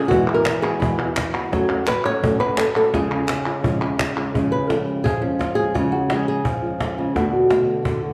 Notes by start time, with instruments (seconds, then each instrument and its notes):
Already playing: nylon-string guitar C#4
0.08 nylon-string guitar E2 B2 E3 G#3 B3 F#4, cajon bass
0.28 nylon-string guitar E3 G#3 B3
0.34 nylon-string guitar A#4
0.46 nylon-string guitar E4, muted nylon-string guitar stroke, cajon slap, clap
0.62 nylon-string guitar E3 G#3 B3 F#4 G#4, clap
0.80 nylon-string guitar E2 B2 E3 G#3 B3 E4 F#4, cajon bass
0.98 nylon-string guitar E3 G#3 B3 F#4, cajon slap, clap
1.16 muted nylon-string guitar stroke, cajon bass, cajon slap, clap
1.34 nylon-string guitar E3 G#3 B3 F#4, clap
1.52 nylon-string guitar F#2 C#3 F#3 A3 C#4 F#4 C#5, cajon bass, cajon slap
1.70 nylon-string guitar F#3 A3 C#4 F#4
1.87 nylon-string guitar B4, muted nylon-string guitar stroke, cajon slap, clap
2.04 nylon-string guitar F#3 A3 C#4 F#4 C#5, clap
2.22 nylon-string guitar F#2 C#3 F#3 A3 C#4 F#4 A4, cajon bass
2.40 nylon-string guitar F#3 A3 C#4 F#4 B4
2.58 nylon-string guitar A4, muted nylon-string guitar stroke, cajon slap, clap
2.76 nylon-string guitar F#3 A3 C#4 F#4 A4, cajon slap, clap
2.93 nylon-string guitar C#3 F3 G#3 C#4 F4 G#4, cajon bass, cajon slap
3.10 nylon-string guitar G#3 C#4 F4
3.28 muted nylon-string guitar stroke, cajon slap, clap
3.46 nylon-string guitar G#3 C#4 F4, clap
3.62 nylon-string guitar C#3 F3 G#3 C#4 F4, cajon bass
3.67 nylon-string guitar C#4
3.80 nylon-string guitar G#3 C#4 F4
3.99 muted nylon-string guitar stroke, cajon bass, cajon slap, clap
4.16 nylon-string guitar G#3 C#4 F4, clap
4.33 nylon-string guitar C#3 F3 G#3 C#4 F4, cajon bass
4.51 nylon-string guitar G#3 C#4 F4 B4
4.68 nylon-string guitar F3 G#3 C#4 F4 A4, cajon slap
4.88 nylon-string guitar G4
5.04 nylon-string guitar F3 G#4, muted nylon-string guitar stroke, cajon bass
5.21 nylon-string guitar G#3 C#4 F4, cajon slap
5.39 nylon-string guitar F4, cajon bass, cajon slap
5.55 nylon-string guitar G#3 C#4 F4 G#4
5.74 nylon-string guitar C#3 F3 G#3 C#4 F4, cajon bass, cajon slap
5.92 nylon-string guitar G#3 C#4 F4 F#4
6.10 nylon-string guitar F3 G#3 C#4 F4 G#4, cajon slap
6.28 nylon-string guitar G#4
6.45 nylon-string guitar F3, muted nylon-string guitar stroke, cajon bass
6.62 nylon-string guitar G#3 C#4 F4, cajon slap
6.80 nylon-string guitar D3, cajon bass, cajon slap
6.97 nylon-string guitar C#3 G#3 C#4 F4
7.14 nylon-string guitar B2 D3 A3 B3 D4 F#4, cajon bass, cajon slap
7.32 nylon-string guitar A3 B3 F#4
7.50 nylon-string guitar D3 A3 B3 F#4, cajon slap
7.85 nylon-string guitar D3, muted nylon-string guitar stroke, cajon bass
8.03 nylon-string guitar A3 B3 F#4